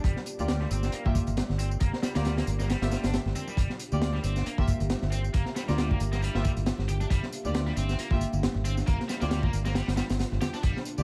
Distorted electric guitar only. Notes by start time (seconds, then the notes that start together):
0.05 G3
0.61 G3
0.71 C4
0.93 A#3
1.59 C4
1.81 A#3
2.03 G3
2.15 A#3
2.25 G3
2.38 A#3
2.60 A#3
2.69 G3
2.92 G3
3.04 D4
3.36 C4
3.48 G3
3.58 G3
4.14 G3
4.24 C4
4.46 A#3
5.12 C4
5.34 A#3
5.56 G3
5.68 A#3
5.78 G3
5.90 A#3
6.12 A#3
6.22 G3
6.44 G3
6.88 G4
7.01 D4
7.10 G3
7.67 G3
7.76 C4
7.99 A#3
8.65 C4
8.87 A#3
9.09 G3
9.21 A#3
9.31 G3
9.44 A#3
9.65 A#3
9.75 G3
9.97 G3
10.41 G4
10.54 D4
10.63 G3